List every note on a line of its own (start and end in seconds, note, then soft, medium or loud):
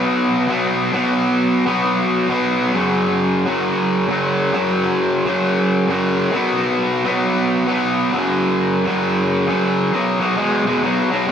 0.00 0.46 B2 medium
0.00 0.49 F#3 medium
0.00 0.47 B3 medium
0.47 0.91 B2 medium
0.47 0.93 F#3 medium
0.47 0.93 B3 medium
0.92 1.64 B2 medium
0.92 1.67 F#3 medium
0.92 1.65 B3 loud
1.66 2.27 B2 medium
1.66 2.29 F#3 medium
1.66 2.27 B3 medium
2.29 2.73 B2 medium
2.29 2.76 F#3 medium
2.29 2.74 B3 medium
2.74 3.48 F#2 medium
2.74 3.45 C#3 medium
2.74 3.46 F#3 medium
3.46 4.07 F#2 medium
3.46 4.08 C#3 medium
3.46 4.10 F#3 medium
4.08 4.51 F#2 medium
4.08 4.53 C#3 medium
4.08 4.55 F#3 medium
4.53 5.24 F#2 medium
4.53 5.25 C#3 medium
4.53 5.25 F#3 medium
5.26 5.86 F#2 medium
5.26 5.88 C#3 medium
5.26 5.90 F#3 medium
5.88 6.32 F#2 medium
5.88 6.32 C#3 medium
5.88 6.33 F#3 medium
6.32 7.04 B2 medium
6.32 7.05 F#3 medium
6.32 7.04 B3 loud
7.05 7.65 B2 medium
7.05 7.68 F#3 medium
7.05 7.66 B3 loud
7.67 8.11 B2 medium
7.67 8.14 F#3 medium
7.67 8.12 B3 medium
8.11 8.83 F#2 medium
8.11 8.84 C#3 medium
8.11 8.84 F#3 loud
8.85 9.46 F#2 medium
8.85 9.47 C#3 medium
8.85 9.46 F#3 medium
9.47 9.91 F#2 medium
9.47 9.92 C#3 medium
9.47 9.92 F#3 medium
9.93 10.18 B2 medium
9.93 10.18 F#3 medium
10.20 10.36 B2 medium
10.20 10.36 F#3 medium
10.37 10.62 B2 medium
10.37 10.63 G#3 medium
10.66 10.81 B2 medium
10.66 10.81 G#3 medium
10.82 11.08 B2 medium
10.82 11.08 F#3 medium
11.10 11.26 B2 medium
11.10 11.26 F#3 medium
11.27 11.32 B2 medium
11.27 11.32 G#3 medium